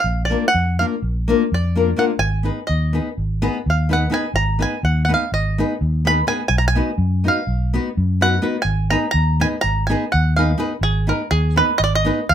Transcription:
0.00 five-string banjo F5
0.04 fingered electric bass A#1
0.25 five-string banjo D5
0.30 nylon-string guitar A#3 D4 F4 A#4
0.48 five-string banjo F#5
0.54 fingered electric bass F2
0.79 nylon-string guitar A#3 D4 F4 A#4, five-string banjo F5
1.02 fingered electric bass A#1
1.28 nylon-string guitar A#3 D4 F4 A#4
1.52 fingered electric bass F2, five-string banjo D5
1.76 nylon-string guitar A#3 D4 F4 A#4
1.96 nylon-string guitar A#3 D4 F4 A#4, five-string banjo F#5
2.19 fingered electric bass G#1, five-string banjo G#5
2.43 nylon-string guitar B3 D#4 G#4 B4
2.67 fingered electric bass D#2, five-string banjo D#5
2.93 nylon-string guitar B3 D#4 G#4 B4
3.18 fingered electric bass G#1
3.42 nylon-string guitar B3 D#4 G#4 B4
3.66 fingered electric bass D#2, five-string banjo F5
3.89 nylon-string guitar B3 D#4 G#4 B4, five-string banjo F#5
4.10 nylon-string guitar B3 D#4 G#4 B4
4.14 five-string banjo G#5
4.34 fingered electric bass G#1, five-string banjo A#5
4.59 nylon-string guitar B3 D#4 G#4 B4, five-string banjo G#5
4.83 fingered electric bass D#2, five-string banjo F#5
5.05 nylon-string guitar B3, five-string banjo F#5
5.09 nylon-string guitar D#4 G#4 B4
5.14 five-string banjo F5
5.32 fingered electric bass G#1, five-string banjo D#5
5.58 nylon-string guitar B3 D#4 G#4 B4
5.81 fingered electric bass D#2
6.05 nylon-string guitar B3 D#4 G#4 B4, five-string banjo B5
6.27 nylon-string guitar B3 D#4 G#4 B4, five-string banjo G#5
6.48 fingered electric bass B1, five-string banjo G#5
6.58 five-string banjo A#5
6.68 five-string banjo G#5
6.75 nylon-string guitar B3 D#4 F#4 B4
6.98 fingered electric bass F#2
7.24 nylon-string guitar B3 D#4 F#4 B4
7.28 five-string banjo F5
7.47 fingered electric bass B1
7.74 nylon-string guitar B3 D#4 F#4 B4
7.97 fingered electric bass F#2
8.21 nylon-string guitar B3 D#4 F#4 B4, five-string banjo F#5
8.42 nylon-string guitar B3 D#4 F#4 B4
8.62 fingered electric bass G#1, five-string banjo G#5
8.90 nylon-string guitar B3 D#4 G#4 B4, five-string banjo A#5
9.11 fingered electric bass D#2, five-string banjo A#5
9.40 nylon-string guitar B3 D#4 G#4 B4, five-string banjo G#5
9.61 fingered electric bass G#1, five-string banjo A#5
9.87 nylon-string guitar B3 D#4 G#4, five-string banjo G#5
9.91 nylon-string guitar B4
10.12 fingered electric bass D#2, five-string banjo F#5
10.36 nylon-string guitar B3 D#4 G#4 B4, five-string banjo F5
10.58 nylon-string guitar B3 D#4 G#4 B4
10.81 fingered electric bass G#1, five-string banjo G#4
11.07 nylon-string guitar B3 D#4 G#4 B4, five-string banjo A#4
11.31 fingered electric bass D#2, five-string banjo G#4
11.56 nylon-string guitar B3 D#4 G#4 B4, five-string banjo B4
11.78 fingered electric bass G#1, five-string banjo D#5
11.84 five-string banjo D5
11.95 five-string banjo D#5
12.05 nylon-string guitar B3 D#4 G#4 B4
12.29 fingered electric bass D#2, five-string banjo F5

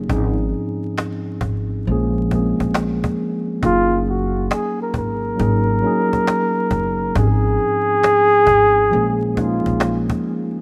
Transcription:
Already playing: tine electric piano F#3 A#3 C#4 D#4 G4 G#4
0.08 upright bass G#1, tine electric piano G#2 F3 C4 C#4 D#4, cajon bass
0.13 tine electric piano G#4
0.38 cajon slap
0.54 cajon slap
0.83 cajon slap
0.98 cajon slap
1.27 cajon slap
1.41 upright bass G#1, cajon bass
1.70 cajon slap
1.85 upright bass A#1, tine electric piano F3 G#3, cajon slap
1.90 tine electric piano A#3 C#4 G#4
2.14 cajon slap
2.31 tine electric piano F3 G#3 A#3 C4, cajon bass
2.35 tine electric piano G#4
2.41 tine electric piano C#4
2.59 upright bass A#1, cajon bass, cajon slap
2.74 cajon slap
3.04 cajon bass
3.18 cajon slap
3.46 cajon slap
3.61 upright bass F#1, tine electric piano F#3 A#3 C#4 D#4, cajon bass
3.65 flugelhorn F4, tine electric piano G#4
3.92 cajon slap
4.07 flugelhorn F#4, cajon slap
4.36 cajon slap
4.51 flugelhorn G#4, cajon slap
4.80 flugelhorn A#4, cajon slap
4.94 upright bass G#1, cajon bass
4.98 flugelhorn A#4
5.23 cajon slap
5.36 tine electric piano F#3 A#3 C#4 D#4, cajon bass
5.40 upright bass G#1, tine electric piano G#4
5.67 cajon slap
5.82 tine electric piano F#3 A#3 C#4 D#4, cajon slap
5.87 tine electric piano G#4
6.13 cajon bass
6.27 cajon slap
6.55 cajon slap
6.71 upright bass F#1, cajon bass
6.98 cajon slap
7.15 upright bass G#1, tine electric piano G#2 F3 C4 C#4, flugelhorn G#4, cajon bass
7.20 tine electric piano D#4 G4
7.27 tine electric piano G#4
7.44 cajon slap
7.60 cajon slap
7.89 cajon slap
8.03 cajon slap
8.33 cajon slap
8.47 upright bass G#1, cajon bass
8.76 cajon slap
8.90 upright bass A#1, tine electric piano F3 G#3 A#3 C#4, cajon slap
8.95 tine electric piano G#4
9.20 cajon slap
9.34 tine electric piano F3 G#3 A#3 C#4, cajon bass
9.39 tine electric piano D#4, flugelhorn F4
9.66 upright bass A#1, cajon bass
9.80 cajon slap
10.10 cajon bass
10.24 cajon slap
10.51 cajon slap

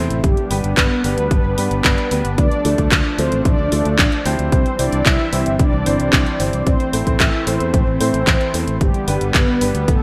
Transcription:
Already playing: analog synth pad C3 A3 E4, grand piano C4 E4 A4 C5, downlifter
0.10 fingered electric bass A1, closed hi-hat
0.24 fingered electric bass G1, analog synth pad G3 B3 D4, analog polysynth G3 G4, kick, closed hi-hat
0.37 closed hi-hat
0.50 fingered electric bass G1, grand piano B3 D4 G4 B4, open hi-hat
0.64 fingered electric bass G1, closed hi-hat
0.77 fingered electric bass G1, analog polysynth B3 B4, kick, clap, closed hi-hat
1.04 fingered electric bass G1, grand piano B3 D4 G4 B4, analog polysynth B3 B4, open hi-hat
1.18 fingered electric bass D2, closed hi-hat
1.31 fingered electric bass G1, analog polysynth B3 B4, kick, closed hi-hat
1.44 fingered electric bass G1
1.58 fingered electric bass G2, grand piano B3 D4 G4 B4, open hi-hat
1.71 fingered electric bass G1, closed hi-hat
1.84 fingered electric bass G1, kick, clap, closed hi-hat
1.98 closed hi-hat
2.11 fingered electric bass D2, grand piano B3 D4 G4 B4, analog polysynth B3 B4, open hi-hat
2.25 fingered electric bass G1, closed hi-hat
2.38 fingered electric bass D2, analog synth pad F3 A3, analog polysynth D4 D5, kick, closed hi-hat
2.51 closed hi-hat
2.65 fingered electric bass D2, grand piano A3 D4 F4 A4, open hi-hat
2.78 fingered electric bass D2, kick, closed hi-hat
2.92 fingered electric bass D2, kick, clap, closed hi-hat
3.18 fingered electric bass D2, grand piano A3 D4 F4 A4, analog polysynth C4 C5, open hi-hat
3.32 fingered electric bass A1, closed hi-hat
3.45 fingered electric bass A1, analog polysynth D4 D5, kick, closed hi-hat
3.59 fingered electric bass D2
3.72 fingered electric bass D2, grand piano A3 D4 F4 A4, open hi-hat
3.85 fingered electric bass D2, closed hi-hat
3.99 fingered electric bass A1, kick, clap, closed hi-hat
4.12 closed hi-hat
4.25 fingered electric bass D2, grand piano C4 E4 G4 C5, open hi-hat
4.39 fingered electric bass D2, closed hi-hat
4.52 fingered electric bass C2, analog synth pad E3 G3 C4, analog polysynth C4 C5, kick, closed hi-hat
4.66 closed hi-hat
4.79 fingered electric bass C2, grand piano C4 E4 G4 C5, analog polysynth D4 D5, open hi-hat
4.92 fingered electric bass C2, closed hi-hat
5.06 fingered electric bass C2, analog polysynth E4 E5, kick, clap, closed hi-hat
5.33 fingered electric bass C2, grand piano C4 E4 G4 C5, open hi-hat
5.46 fingered electric bass G1, closed hi-hat
5.59 fingered electric bass C2, analog polysynth D4 D5, kick, closed hi-hat
5.73 fingered electric bass C2
5.86 fingered electric bass G1, grand piano C4 E4 G4 C5, open hi-hat
6.00 fingered electric bass C2, closed hi-hat
6.13 fingered electric bass C2, kick, clap, closed hi-hat
6.26 closed hi-hat
6.40 fingered electric bass G1, grand piano C4 E4 G4 C5, open hi-hat
6.53 fingered electric bass C2, closed hi-hat
6.67 fingered electric bass A1, analog synth pad E3 A3, analog polysynth C4 C5, kick, closed hi-hat
6.80 closed hi-hat
6.93 fingered electric bass A1, grand piano C4 E4 A4 C5, open hi-hat
7.07 fingered electric bass A1, kick, closed hi-hat
7.20 fingered electric bass A1, analog polysynth E4 E5, kick, clap, closed hi-hat
7.47 fingered electric bass A1, grand piano C4 E4 A4 C5, analog polysynth C4 C5, open hi-hat
7.60 fingered electric bass E2, closed hi-hat
7.74 fingered electric bass A1, kick, closed hi-hat
7.87 fingered electric bass A1
8.00 fingered electric bass A2, grand piano C4 E4 A4 C5, open hi-hat
8.14 fingered electric bass A1, closed hi-hat
8.27 fingered electric bass A1, kick, clap, closed hi-hat
8.41 closed hi-hat
8.54 fingered electric bass E2, grand piano C4 E4 A4 C5, open hi-hat
8.67 fingered electric bass A1, closed hi-hat
8.81 fingered electric bass G1, analog synth pad D3 G3 B3, analog polysynth G3 G4, kick, closed hi-hat
8.94 closed hi-hat
9.08 fingered electric bass G1, grand piano B3 D4 G4 B4, open hi-hat
9.21 fingered electric bass G1, closed hi-hat
9.34 fingered electric bass G1, analog polysynth B3 B4, kick, clap, closed hi-hat
9.61 fingered electric bass G1, grand piano B3 D4 G4 B4, open hi-hat
9.75 fingered electric bass D2, closed hi-hat
9.88 fingered electric bass G1, analog polysynth A3 A4, kick, closed hi-hat

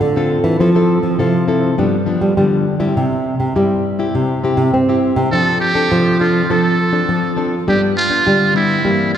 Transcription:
0.01 nylon-string guitar A2 D3
0.16 nylon-string guitar C4 F4 A4
0.44 nylon-string guitar E3
0.60 nylon-string guitar F3 C4 E4 A4
0.75 nylon-string guitar C4 E4 A4
1.03 nylon-string guitar F3
1.18 nylon-string guitar C3 F3 C4 E4 A4
1.48 nylon-string guitar C4 E4 A4
1.78 nylon-string guitar G2 F3 G3 B3 D4
2.06 nylon-string guitar F3 B3 D4
2.21 nylon-string guitar G3
2.37 nylon-string guitar D3 F3 G3 B3 D4
2.80 nylon-string guitar G3 C4 E4 G4
2.96 nylon-string guitar C3
3.40 nylon-string guitar C3
3.55 nylon-string guitar G2 G3 C4 E4 G4
3.99 nylon-string guitar C4 E4 G4
4.15 nylon-string guitar C3
4.44 nylon-string guitar C4 E4 G4
4.57 nylon-string guitar C3
4.73 nylon-string guitar G2 C4
4.89 nylon-string guitar C4 E4 G4
5.16 nylon-string guitar C3
5.32 nylon-string guitar F3 C4 D4 A4, muted trumpet A4
5.60 muted trumpet G4
5.74 nylon-string guitar C4 D4 A4
5.92 nylon-string guitar C3 F3
6.20 nylon-string guitar C4 D4 A4, muted trumpet F4
6.50 nylon-string guitar F3 C4 D4 A4, muted trumpet A4
6.93 nylon-string guitar C4 D4 A4
7.09 nylon-string guitar F3
7.36 nylon-string guitar C4 D4 A4
7.67 nylon-string guitar G2 G3 B3 D4, muted trumpet G4
7.97 muted trumpet F4
8.10 nylon-string guitar G3 B3 D4
8.26 nylon-string guitar D3 G3
8.54 nylon-string guitar G3 B3 D4, muted trumpet E4
8.84 nylon-string guitar G2 E3 G3 A#3 C4

